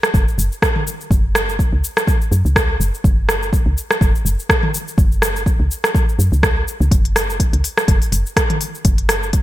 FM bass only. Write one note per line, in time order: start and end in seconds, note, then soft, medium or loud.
0.14 0.25 F#1 loud
0.38 0.49 F#1 medium
1.11 1.69 F#1 loud
1.73 1.82 C#2 medium
2.32 2.43 F#2 medium
2.45 2.77 C#2 medium
2.80 2.91 F#1 medium
3.04 3.63 F#1 loud
3.66 3.75 C#2 medium
4.01 4.12 F#1 loud
4.25 4.37 F#1 medium
4.98 5.56 F#1 loud
5.60 5.69 C#2 medium
6.19 6.30 F#2 medium
6.32 6.64 C#2 medium
6.80 6.90 C#2 loud
6.91 7.50 F#1 loud
7.53 7.62 C#2 medium
7.88 7.99 F#1 loud
8.12 8.24 F#1 medium
8.85 9.43 F#1 loud